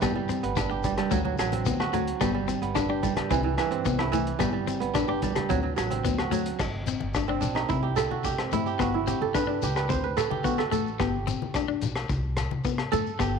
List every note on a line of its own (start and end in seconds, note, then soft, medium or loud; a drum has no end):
0.00 0.36 G1 medium
0.00 0.14 G3 medium
0.00 0.20 B3 medium
0.00 0.49 C4 medium
0.00 1.17 E4 medium
0.00 kick medium
0.00 cross-stick medium
0.00 closed hi-hat soft
0.00 low agogo medium
0.00 shekere medium
0.15 0.83 G3 medium
0.29 0.47 C4 medium
0.29 closed hi-hat soft
0.29 low conga medium
0.29 shekere medium
0.43 1.00 G1 medium
0.43 1.58 B3 medium
0.43 closed hi-hat medium
0.56 2.25 D4 medium
0.56 muted clean electric guitar stroke medium
0.56 kick medium
0.56 cross-stick medium
0.56 closed hi-hat medium
0.56 low agogo medium
0.56 shekere loud
0.70 1.17 G4 medium
0.70 muted clean electric guitar stroke medium
0.83 0.97 G3 medium
0.83 kick medium
0.83 closed hi-hat soft
0.83 low conga medium
0.83 shekere medium
0.98 1.16 G3 medium
0.98 cross-stick medium
0.98 closed hi-hat soft
0.98 low agogo medium
1.11 1.34 D2 loud
1.11 1.23 F#3 medium
1.11 1.28 A3 medium
1.11 kick medium
1.11 closed hi-hat soft
1.11 shekere medium
1.25 1.38 F#3 medium
1.25 high conga medium
1.38 1.61 A1 medium
1.38 1.92 F#3 medium
1.38 cross-stick medium
1.38 closed hi-hat medium
1.38 low agogo medium
1.38 shekere medium
1.52 2.68 C4 medium
1.52 closed hi-hat medium
1.52 high conga medium
1.66 2.12 D2 loud
1.66 1.84 B3 medium
1.66 kick medium
1.66 closed hi-hat medium
1.66 shekere medium
1.80 2.27 F#4 medium
1.80 cross-stick medium
1.80 low agogo medium
1.93 2.26 F#3 medium
1.93 2.11 A3 medium
1.93 closed hi-hat medium
1.93 low conga medium
1.93 shekere medium
2.07 closed hi-hat medium
2.21 2.55 G1 medium
2.21 2.33 G3 medium
2.21 2.38 B3 medium
2.21 kick medium
2.21 cross-stick medium
2.21 closed hi-hat soft
2.21 low agogo medium
2.21 shekere medium
2.34 3.02 G3 medium
2.48 2.65 C4 medium
2.48 closed hi-hat medium
2.48 low conga medium
2.48 shekere medium
2.62 3.19 G1 medium
2.62 3.77 B3 medium
2.62 closed hi-hat medium
2.75 4.43 D4 medium
2.75 2.84 D4 medium
2.75 kick medium
2.75 cross-stick medium
2.75 closed hi-hat soft
2.75 low agogo medium
2.75 shekere medium
2.89 3.07 D4 medium
2.89 4.30 G4 medium
3.03 3.15 G3 medium
3.03 kick medium
3.03 closed hi-hat medium
3.03 low conga medium
3.03 shekere medium
3.16 4.38 G3 medium
3.16 cross-stick medium
3.16 closed hi-hat medium
3.16 high conga medium
3.16 low agogo medium
3.30 3.53 C2 loud
3.30 3.43 E3 medium
3.30 3.48 C4 medium
3.30 kick medium
3.30 closed hi-hat soft
3.30 shekere medium
3.43 3.56 E3 medium
3.43 high conga medium
3.57 3.81 G2 medium
3.57 4.11 E3 medium
3.57 cross-stick medium
3.57 closed hi-hat soft
3.57 low agogo medium
3.57 shekere medium
3.71 4.86 C4 medium
3.71 closed hi-hat soft
3.85 4.31 C2 medium
3.85 4.03 B3 medium
3.85 kick medium
3.85 closed hi-hat soft
3.85 shekere medium
3.98 5.55 E4 medium
3.98 cross-stick medium
3.98 low agogo medium
4.12 4.45 E3 medium
4.12 4.31 A3 medium
4.12 closed hi-hat soft
4.12 low conga medium
4.12 shekere medium
4.27 closed hi-hat soft
4.39 4.74 G1 medium
4.39 4.52 G3 medium
4.39 4.57 B3 medium
4.39 kick medium
4.39 cross-stick medium
4.39 closed hi-hat soft
4.39 low conga medium
4.39 low agogo medium
4.39 shekere medium
4.53 5.21 G3 medium
4.67 4.85 C4 medium
4.67 closed hi-hat soft
4.67 high conga medium
4.67 shekere medium
4.80 5.38 G1 medium
4.80 5.96 B3 medium
4.80 closed hi-hat soft
4.94 6.62 D4 medium
4.94 5.04 D4 medium
4.94 kick medium
4.94 cross-stick medium
4.94 closed hi-hat soft
4.94 low agogo medium
4.94 shekere medium
5.08 5.26 D4 medium
5.08 5.55 G4 medium
5.22 5.35 G3 medium
5.22 kick medium
5.22 closed hi-hat soft
5.22 low conga medium
5.22 shekere medium
5.35 5.55 G3 medium
5.35 cross-stick medium
5.35 closed hi-hat medium
5.35 high conga medium
5.35 low agogo medium
5.49 5.73 D2 loud
5.49 5.62 F#3 medium
5.49 5.68 C4 medium
5.49 kick medium
5.49 closed hi-hat soft
5.49 shekere medium
5.63 5.75 F#3 medium
5.76 6.00 A1 medium
5.76 6.31 F#3 medium
5.76 cross-stick medium
5.76 closed hi-hat medium
5.76 low agogo medium
5.76 shekere medium
5.90 7.27 C4 medium
5.90 closed hi-hat medium
5.90 high conga medium
6.05 6.51 D2 loud
6.05 6.22 B3 medium
6.05 kick medium
6.05 closed hi-hat medium
6.05 shekere medium
6.18 7.65 F#4 medium
6.18 cross-stick medium
6.18 low agogo medium
6.31 6.65 F#3 medium
6.31 6.49 A3 medium
6.31 closed hi-hat soft
6.31 low conga medium
6.31 shekere medium
6.46 closed hi-hat medium
6.59 6.94 G1 loud
6.59 muted clean electric guitar stroke medium
6.59 kick medium
6.59 cross-stick medium
6.59 crash medium
6.59 low agogo medium
6.59 shekere medium
6.86 7.05 C4 medium
6.86 closed hi-hat soft
6.86 high conga medium
6.86 shekere medium
7.01 7.36 G1 medium
7.01 high conga medium
7.14 7.25 D4 medium
7.14 kick medium
7.14 cross-stick medium
7.14 low agogo medium
7.14 shekere medium
7.28 8.39 C4 medium
7.28 7.47 D4 medium
7.41 7.65 B1 medium
7.41 7.61 D4 medium
7.41 closed hi-hat soft
7.41 low conga medium
7.41 shekere loud
7.55 7.75 D#4 medium
7.55 cross-stick medium
7.55 low agogo medium
7.55 shekere soft
7.69 8.04 C2 medium
7.69 7.87 C4 medium
7.69 8.52 E4 medium
7.69 kick medium
7.69 shekere medium
7.83 8.17 G4 medium
7.96 9.21 A4 loud
7.96 cross-stick medium
7.96 closed hi-hat soft
7.96 low agogo medium
7.96 shekere loud
8.11 8.46 C3 medium
8.11 8.30 F#4 medium
8.11 high conga medium
8.24 8.66 G4 medium
8.24 muted clean electric guitar stroke medium
8.24 kick medium
8.24 shekere medium
8.38 9.41 C4 medium
8.38 cross-stick medium
8.38 low agogo medium
8.52 8.75 G2 medium
8.52 8.70 A3 medium
8.52 8.94 E4 medium
8.52 closed hi-hat soft
8.52 high conga medium
8.52 low conga medium
8.52 shekere loud
8.66 8.86 G4 medium
8.66 shekere soft
8.79 9.14 G1 medium
8.79 8.97 B3 medium
8.79 9.13 F#4 medium
8.79 kick medium
8.79 cross-stick medium
8.79 low agogo medium
8.79 shekere medium
8.94 10.51 E4 medium
9.07 9.25 C4 medium
9.07 9.63 G4 medium
9.07 closed hi-hat soft
9.07 high conga medium
9.07 shekere loud
9.21 9.55 G1 medium
9.21 10.16 A4 medium
9.21 high conga medium
9.34 9.43 D4 medium
9.34 9.76 B4 medium
9.34 kick medium
9.34 cross-stick medium
9.34 low agogo medium
9.34 shekere medium
9.47 9.65 D4 medium
9.47 11.17 D4 medium
9.62 9.85 C#2 medium
9.62 10.30 G4 medium
9.62 closed hi-hat soft
9.62 low conga medium
9.62 shekere medium
9.76 9.96 B4 medium
9.76 cross-stick medium
9.76 low agogo medium
9.76 shekere soft
9.89 10.24 D2 medium
9.89 10.07 C4 medium
9.89 10.10 C5 medium
9.89 kick medium
9.89 shekere medium
10.04 11.27 B4 medium
10.17 10.58 A4 medium
10.17 cross-stick medium
10.17 closed hi-hat medium
10.17 low agogo medium
10.17 shekere loud
10.30 10.65 D3 medium
10.30 10.50 G4 medium
10.30 high conga medium
10.44 10.62 B3 medium
10.44 11.06 F#4 medium
10.44 kick medium
10.44 shekere medium
10.58 10.71 A4 medium
10.58 cross-stick medium
10.58 low agogo medium
10.71 10.95 A1 medium
10.71 10.89 A3 medium
10.71 12.03 A4 medium
10.71 closed hi-hat soft
10.71 high conga medium
10.71 low conga medium
10.71 shekere medium
10.86 shekere soft
11.00 11.34 G1 loud
11.00 11.17 B3 medium
11.00 12.41 G4 medium
11.00 kick medium
11.00 cross-stick medium
11.00 low agogo medium
11.00 shekere medium
11.27 11.45 C4 medium
11.27 closed hi-hat soft
11.27 high conga medium
11.27 shekere medium
11.41 11.75 G1 medium
11.41 high conga medium
11.54 11.65 D4 medium
11.54 kick medium
11.54 cross-stick medium
11.54 low agogo medium
11.54 shekere medium
11.68 11.86 D4 medium
11.81 12.05 B1 medium
11.81 closed hi-hat soft
11.81 low conga medium
11.81 shekere medium
11.96 cross-stick medium
11.96 low agogo medium
11.96 shekere soft
12.09 12.44 C2 medium
12.09 muted clean electric guitar stroke medium
12.09 kick medium
12.09 shekere medium
12.37 cross-stick medium
12.37 closed hi-hat soft
12.37 low agogo medium
12.37 shekere medium
12.51 12.86 C3 medium
12.51 high conga medium
12.65 12.82 B3 medium
12.65 kick medium
12.65 shekere medium
12.78 cross-stick medium
12.78 low agogo medium
12.92 13.15 G2 medium
12.92 13.10 A3 medium
12.92 13.39 A4 loud
12.92 closed hi-hat soft
12.92 high conga medium
12.92 low conga medium
12.92 shekere medium
13.07 shekere soft
13.19 13.39 G1 loud
13.19 13.37 B3 medium
13.19 13.39 G4 medium
13.19 kick medium
13.19 cross-stick medium
13.19 low agogo medium
13.19 shekere medium